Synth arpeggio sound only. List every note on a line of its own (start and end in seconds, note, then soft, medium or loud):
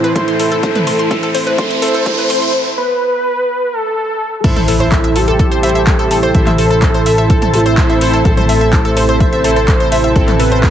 0.04 0.07 B4 loud
0.16 0.21 C6 medium
0.28 0.31 C6 medium
0.40 0.43 A4 medium
0.52 0.57 A4 loud
0.63 0.66 C5 loud
0.75 0.78 B4 loud
0.87 0.92 C6 medium
0.99 1.02 C6 medium
1.11 1.14 A4 medium
1.23 1.28 A4 loud
1.35 1.38 C5 loud
1.47 1.50 B4 loud
1.58 1.64 C6 medium
1.70 1.74 C6 medium
1.82 1.85 A4 medium
1.94 1.99 A4 loud
2.06 2.09 C5 loud
2.18 2.21 B4 loud
2.30 2.35 C6 medium
2.42 2.45 C6 medium
4.44 4.52 A4 medium
4.44 4.52 A5 medium
4.56 4.59 A4 loud
4.56 4.59 A5 medium
4.68 4.76 A4 medium
4.68 4.76 A5 medium
4.80 4.88 C5 loud
4.80 4.88 C6 medium
4.92 4.97 E5 loud
4.92 4.97 E6 medium
5.04 5.09 E5 loud
5.04 5.09 E6 medium
5.16 5.23 A4 medium
5.16 5.23 A5 medium
5.28 5.31 A4 loud
5.28 5.31 A5 medium
5.39 5.47 A4 medium
5.39 5.47 A5 medium
5.51 5.59 C5 medium
5.51 5.59 C6 medium
5.63 5.68 E5 loud
5.63 5.68 E6 medium
5.75 5.80 E5 loud
5.75 5.80 E6 medium
5.87 5.95 A4 medium
5.87 5.95 A5 medium
5.99 6.02 A4 loud
5.99 6.02 A5 medium
6.11 6.19 A4 medium
6.11 6.19 A5 medium
6.23 6.30 C5 loud
6.23 6.30 C6 medium
6.35 6.40 E5 loud
6.35 6.40 E6 medium
6.47 6.52 E5 loud
6.47 6.52 E6 medium
6.58 6.66 A4 medium
6.58 6.66 A5 medium
6.71 6.74 A4 loud
6.71 6.74 A5 medium
6.82 6.90 A4 medium
6.82 6.90 A5 medium
6.94 7.02 C5 loud
6.94 7.02 C6 medium
7.06 7.11 E5 loud
7.06 7.11 E6 medium
7.18 7.23 E5 loud
7.18 7.23 E6 medium
7.30 7.38 A4 medium
7.30 7.38 A5 medium
7.42 7.45 A4 medium
7.42 7.45 A5 medium
7.54 7.61 A4 medium
7.54 7.61 A5 medium
7.66 7.73 C5 loud
7.66 7.73 C6 medium
7.78 7.83 E5 loud
7.78 7.83 E6 medium
7.90 7.95 E5 loud
7.90 7.95 E6 medium
8.01 8.09 A4 medium
8.01 8.09 A5 medium
8.13 8.16 A4 loud
8.13 8.16 A5 medium
8.25 8.33 A4 medium
8.25 8.33 A5 medium
8.37 8.45 C5 loud
8.37 8.45 C6 medium
8.49 8.54 E5 loud
8.49 8.54 E6 medium
8.61 8.66 E5 loud
8.61 8.66 E6 medium
8.73 8.80 A4 medium
8.73 8.80 A5 medium
8.85 8.88 A4 loud
8.85 8.88 A5 medium
8.97 9.04 A4 medium
8.97 9.04 A5 medium
9.09 9.16 C5 loud
9.09 9.16 C6 medium
9.20 9.26 E5 loud
9.20 9.26 E6 medium
9.33 9.38 E5 loud
9.33 9.38 E6 medium
9.44 9.52 A4 medium
9.44 9.52 A5 medium
9.56 9.59 A4 loud
9.56 9.59 A5 medium
9.68 9.76 A4 medium
9.68 9.76 A5 medium
9.80 9.88 C5 loud
9.80 9.88 C6 medium
9.92 9.97 E5 loud
9.92 9.97 E6 medium
10.04 10.09 E5 loud
10.04 10.09 E6 medium
10.16 10.23 A4 medium
10.16 10.23 A5 medium
10.28 10.31 A4 loud
10.28 10.31 A5 medium
10.39 10.47 A4 medium
10.39 10.47 A5 medium
10.52 10.59 C5 loud
10.52 10.59 C6 medium
10.63 10.68 E5 loud
10.63 10.68 E6 medium